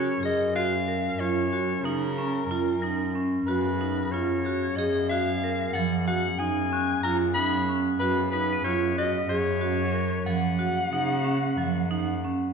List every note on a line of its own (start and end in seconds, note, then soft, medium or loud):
0.00 3.31 A#2 soft
0.00 0.18 C#3 medium
0.00 3.31 F#3 medium
0.00 10.09 C#4 medium
0.00 0.24 C#5 medium
0.21 1.14 F#2 medium
0.21 0.40 G#4 medium
0.25 0.54 D#5 medium
0.56 0.72 F#4 medium
0.56 1.21 F5 medium
0.88 1.05 A#4 medium
1.18 1.80 F#2 medium
1.18 1.37 F4 medium
1.18 1.86 C#5 medium
1.53 1.69 F#4 medium
1.83 2.45 C#3 medium
1.83 2.02 D#4 medium
1.83 3.15 A#4 medium
2.18 2.35 C#4 medium
2.48 3.43 F#2 medium
2.48 2.68 F4 medium
2.82 3.00 D#4 medium
2.82 3.76 A#6 soft
3.15 3.32 C#4 medium
3.46 4.08 F#2 medium
3.46 10.09 C#3 medium
3.46 10.09 B3 medium
3.46 3.65 F#4 medium
3.46 4.13 B4 medium
3.81 3.98 D#4 medium
4.11 4.74 F#2 medium
4.11 4.31 F4 medium
4.11 4.78 C#5 medium
4.45 4.63 F#4 medium
4.45 6.48 G#6 soft
4.76 5.71 F#2 medium
4.76 4.95 G#4 medium
4.76 5.09 D#5 medium
5.09 5.28 F#4 medium
5.09 5.71 F5 medium
5.44 5.60 A#4 medium
5.73 6.36 F#2 medium
5.73 5.92 F3 medium
5.73 6.04 F#5 medium
6.07 6.24 F#4 medium
6.07 6.40 F#5 medium
6.39 7.00 F#2 medium
6.39 6.57 D#4 medium
6.39 7.03 G#5 medium
6.72 6.89 C#4 medium
6.72 8.74 F#6 medium
7.03 7.96 F#2 loud
7.03 7.21 F4 medium
7.03 7.18 A#5 medium
7.34 7.53 D#4 medium
7.34 7.70 B5 medium
7.69 7.86 C#4 medium
7.99 8.61 F#2 medium
7.99 8.18 F#4 medium
7.99 8.30 B4 medium
8.31 8.50 D#4 medium
8.31 8.62 B4 medium
8.31 10.35 B6 soft
8.53 10.53 D#7 soft
8.64 9.25 F#2 medium
8.64 8.82 F4 medium
8.64 8.94 C#5 medium
8.98 9.15 F#4 medium
8.98 9.28 D#5 medium
9.29 10.22 F#2 loud
9.29 9.47 G#4 medium
9.29 10.22 C#5 medium
9.61 9.78 F#4 medium
9.94 10.11 A#4 medium
10.26 10.88 F#2 medium
10.26 12.53 C#3 medium
10.26 10.43 F3 medium
10.26 12.53 A#3 medium
10.26 12.19 F#5 medium
10.26 12.53 F#5 medium
10.59 10.76 F#4 medium
10.92 11.53 C#3 medium
10.92 11.10 D#4 medium
11.24 11.42 C#4 medium
11.58 12.53 F#2 medium
11.58 11.75 F3 medium
11.91 12.08 D#4 medium
12.24 12.41 C#4 medium